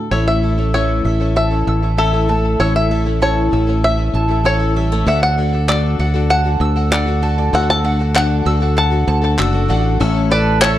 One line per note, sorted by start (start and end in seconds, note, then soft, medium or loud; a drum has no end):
0.00 0.12 D2 medium
0.00 0.12 D3 soft
0.00 0.11 A4 medium
0.11 1.01 A1 medium
0.11 0.43 A2 medium
0.11 0.43 E3 medium
0.11 0.41 A3 medium
0.11 0.42 C#4 medium
0.11 0.43 E4 medium
0.11 0.43 A4 medium
0.11 0.28 C#5 medium
0.11 1.04 E5 medium
0.28 0.74 E5 medium
0.42 0.58 A3 soft
0.42 0.58 C#4 soft
0.42 0.58 E4 medium
0.42 0.57 A4 soft
0.58 0.74 A3 soft
0.58 0.74 C#4 soft
0.58 0.74 E4 soft
0.58 0.74 A4 soft
0.74 1.05 A2 medium
0.74 1.05 E3 medium
0.74 1.04 A3 medium
0.74 1.05 C#4 medium
0.74 1.06 E4 medium
0.74 1.06 A4 medium
0.74 1.36 C#5 medium
0.74 1.66 E6 medium
1.05 1.63 A1 medium
1.05 1.21 A3 soft
1.05 1.20 C#4 soft
1.05 1.19 E4 medium
1.05 1.19 A4 soft
1.05 1.97 E5 medium
1.20 1.51 A3 soft
1.20 1.51 C#4 soft
1.20 1.50 E4 soft
1.20 1.49 A4 soft
1.36 2.56 E2 medium
1.36 2.00 E5 medium
1.36 2.28 A5 medium
1.50 1.83 A3 soft
1.50 1.82 C#4 soft
1.50 1.81 E4 soft
1.50 1.81 A4 soft
1.67 2.56 A1 medium
1.67 2.59 E6 medium
1.82 1.96 A3 soft
1.82 1.97 C#4 soft
1.82 1.97 E4 soft
1.82 1.97 A4 soft
1.97 2.13 A2 medium
1.97 2.13 E3 medium
1.97 2.13 A3 medium
1.97 2.13 C#4 medium
1.97 2.13 E4 medium
1.97 2.62 A4 medium
1.97 2.12 A4 medium
1.97 2.90 E5 medium
2.13 2.27 A3 soft
2.13 2.28 C#4 soft
2.13 2.29 E4 soft
2.13 2.29 A4 medium
2.28 2.59 A3 soft
2.28 2.60 C#4 soft
2.28 2.59 E4 medium
2.28 2.60 A4 soft
2.28 3.21 A5 medium
2.59 3.48 A1 medium
2.59 2.91 A2 medium
2.59 2.91 E3 medium
2.59 2.88 A3 medium
2.59 2.90 C#4 medium
2.59 2.90 E4 medium
2.59 2.90 A4 medium
2.59 2.74 C#5 medium
2.59 3.52 E6 medium
2.76 3.19 E5 medium
2.90 3.06 A3 medium
2.90 3.05 C#4 medium
2.90 3.05 E4 medium
2.90 3.04 A4 medium
2.90 3.83 E5 medium
3.05 3.20 A3 soft
3.05 3.21 C#4 soft
3.05 3.21 E4 soft
3.05 3.21 A4 soft
3.21 3.52 A2 medium
3.21 3.52 E3 medium
3.21 3.50 A3 medium
3.21 3.51 C#4 medium
3.21 3.51 E4 medium
3.21 3.52 A4 medium
3.21 3.84 C#5 medium
3.21 4.13 A5 medium
3.51 4.10 A1 medium
3.51 3.67 A3 soft
3.51 3.67 C#4 soft
3.51 3.67 E4 medium
3.51 3.66 A4 medium
3.51 4.44 E6 medium
3.67 3.98 A3 soft
3.67 3.97 C#4 soft
3.67 3.97 E4 soft
3.67 3.96 A4 medium
3.83 5.03 E2 medium
3.83 4.75 E5 medium
3.83 4.46 E5 medium
3.97 4.29 A3 soft
3.97 4.28 C#4 soft
3.97 4.27 E4 soft
3.97 4.27 A4 soft
4.14 5.03 A1 medium
4.14 5.07 A5 medium
4.28 4.44 A3 soft
4.28 4.43 C#4 soft
4.28 4.44 E4 soft
4.28 4.44 A4 soft
4.44 4.60 A2 medium
4.44 4.60 E3 medium
4.44 4.60 A3 medium
4.44 4.59 C#4 medium
4.44 4.59 E4 medium
4.44 4.58 A4 medium
4.44 5.08 C#5 medium
4.44 5.07 E6 medium
4.59 4.73 A3 soft
4.59 4.74 C#4 soft
4.59 4.75 E4 medium
4.59 4.75 A4 medium
4.74 4.92 G3 medium
4.74 5.05 A3 medium
4.74 5.07 C#4 medium
4.74 5.07 E4 medium
4.74 5.06 A4 medium
4.74 5.07 E5 medium
4.92 5.07 A3 soft
5.06 5.96 D2 loud
5.06 5.37 D3 medium
5.06 5.36 A3 medium
5.06 5.36 D4 medium
5.06 5.37 F#4 medium
5.06 5.38 A4 medium
5.06 5.23 E5 medium
5.06 5.98 F#5 medium
5.23 5.71 F#5 medium
5.37 5.53 A3 medium
5.37 5.53 D4 medium
5.37 5.53 F#4 medium
5.37 5.51 A4 medium
5.53 5.68 D4 soft
5.53 5.68 F#4 medium
5.53 5.68 A4 medium
5.68 5.99 D3 medium
5.68 5.97 A3 medium
5.68 5.99 D4 medium
5.68 5.99 F#4 medium
5.68 6.00 A4 medium
5.68 6.33 D5 medium
5.68 6.60 E6 medium
5.68 clap medium
5.98 6.57 D2 medium
5.98 6.15 A3 medium
5.98 6.14 D4 medium
5.98 6.13 F#4 medium
5.98 6.13 A4 medium
5.98 6.91 F#5 medium
6.14 6.45 D4 soft
6.14 6.44 F#4 soft
6.14 6.43 A4 medium
6.30 6.94 F#5 loud
6.30 7.21 A5 medium
6.44 6.77 D4 soft
6.44 6.76 F#4 soft
6.44 6.75 A4 soft
6.60 7.49 D2 loud
6.60 7.52 E6 medium
6.76 6.90 D4 soft
6.76 6.91 F#4 soft
6.76 6.91 A4 medium
6.91 7.07 D3 medium
6.91 7.07 A3 medium
6.91 7.07 D4 medium
6.91 7.06 F#4 medium
6.91 7.05 A4 medium
6.91 7.56 D5 loud
6.91 7.83 F#5 medium
6.91 clap loud
7.06 7.21 D4 medium
7.06 7.21 F#4 medium
7.06 7.22 A4 medium
7.22 7.38 A3 medium
7.22 7.38 D4 medium
7.22 7.38 F#4 medium
7.22 7.37 A4 medium
7.22 8.14 A5 medium
7.38 7.52 D4 soft
7.38 7.53 F#4 soft
7.38 7.53 A4 soft
7.53 8.42 D2 loud
7.53 7.84 D3 medium
7.53 7.82 A3 medium
7.53 7.83 D4 medium
7.53 7.83 F#4 medium
7.53 7.84 A4 medium
7.53 7.70 F#5 loud
7.53 8.45 E6 medium
7.70 8.15 A5 loud
7.84 8.00 A3 medium
7.84 8.00 D4 medium
7.84 7.99 F#4 medium
7.84 7.98 A4 medium
7.84 8.75 F#5 medium
7.99 8.15 D4 soft
7.99 8.15 F#4 soft
7.99 8.15 A4 soft
8.15 8.46 D3 medium
8.15 8.44 A3 medium
8.15 8.45 D4 medium
8.15 8.46 F#4 medium
8.15 8.46 A4 medium
8.15 8.77 F#5 loud
8.15 9.06 A5 medium
8.15 clap medium
8.45 9.04 D2 medium
8.45 8.61 A3 medium
8.45 8.61 D4 medium
8.45 8.61 F#4 medium
8.45 8.59 A4 medium
8.45 9.38 E6 medium
8.60 8.91 D4 soft
8.60 8.90 F#4 medium
8.60 8.89 A4 medium
8.77 9.69 F#5 medium
8.77 9.35 A5 loud
8.90 9.22 D4 soft
8.90 9.22 F#4 medium
8.90 9.20 A4 soft
9.07 9.35 D2 loud
9.07 10.00 A5 medium
9.22 9.38 D4 soft
9.22 9.38 F#4 medium
9.22 9.38 A4 medium
9.38 9.66 F#1 medium
9.38 9.54 D3 medium
9.38 9.54 A3 medium
9.38 9.54 D4 loud
9.38 9.53 F#4 medium
9.38 9.52 A4 medium
9.38 10.00 E6 loud
9.38 clap medium
9.53 9.68 D4 medium
9.53 9.69 F#4 medium
9.53 9.69 A4 medium
9.68 9.97 A1 loud
9.68 9.99 A3 medium
9.68 10.00 D4 medium
9.68 10.00 F#4 medium
9.68 10.00 A4 medium
9.68 10.00 F#5 medium
10.00 10.78 A1 loud
10.00 10.31 A2 medium
10.00 10.31 E3 medium
10.00 10.29 A3 medium
10.00 10.31 C#4 loud
10.00 10.31 E4 loud
10.00 10.31 A4 loud
10.00 10.78 E6 medium
10.30 10.61 A3 medium
10.30 10.61 E4 medium
10.30 10.62 A4 medium
10.30 10.59 B4 medium
10.30 10.61 D5 medium
10.30 10.78 A5 medium
10.61 10.78 A2 medium
10.61 10.78 E3 medium
10.61 10.78 A3 medium
10.61 10.78 C#4 medium
10.61 10.78 E4 medium
10.61 10.78 A4 medium
10.61 10.78 A4 loud
10.61 10.78 C#5 loud
10.61 10.78 E5 medium
10.61 clap loud